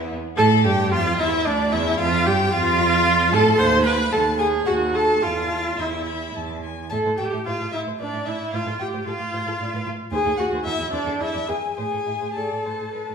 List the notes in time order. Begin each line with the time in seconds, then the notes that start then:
Already playing: E2 B3
0.37 A2 A4 A5
0.64 G2 G4 G5
0.91 F2 F4 F5
1.18 E2 E4 E5
1.46 D2 D4 D5
1.72 E2 E4 E5
1.99 F2 F4 F5
2.25 G2 G4 G5
2.52 F2 F4 F5
3.32 A2 A4 A5
3.57 D#2 C5 F#5 C6
3.84 B4 F#5 B5
4.12 D#2 A4 F#5 A5
4.39 G#4 F#5 G#5
4.66 D#2 F#4 F#5
4.94 A4 F#5 A5
5.22 E2 F4 F5 A5
5.50 A5
5.79 E2 E4 E5 C6
6.06 B5
6.35 E2 A5
6.64 G#5
6.90 A2 A4 E5 A5
7.06 A2 C5
7.18 A2 G4 A4 G5
7.33 A2 E5
7.47 A2 F4 C5 F5
7.60 A2 A4
7.72 A2 E4 E5
7.87 A2 C5
8.00 A2 D4 B4 D5
8.13 A2 E5
8.26 A2 E4 D5 E5
8.52 A2 F4 C5 F5
8.66 A2 A4
8.79 A2 F4 G4 G5
8.93 A2 C5
9.06 A2 F4 A4 F5
9.19 A2 F4
9.33 A2 C5
9.47 A2 A4
9.60 A2 D4
9.73 A2 B4
9.86 A2 F4
10.12 D#2 G#4 C5 G#5
10.25 D#2 A4
10.37 D#2 F#4 F#5
10.52 D#2 C5
10.64 E2 E4 A4 E5
10.79 E2 E4
10.92 E2 D4 C5 D5
11.06 E2 A4
11.20 E2 E4 G#4 E5
11.33 E2 D5
11.48 E2 G#4 B4 G#5
11.76 A2 G#4 C5 G#5
11.91 A2 A4
12.06 A2 E4
12.21 A2 C5
12.35 A2 A4 D5 A5
12.52 A2
12.65 A2 C5
12.81 A2
12.93 A2 B4
13.09 A2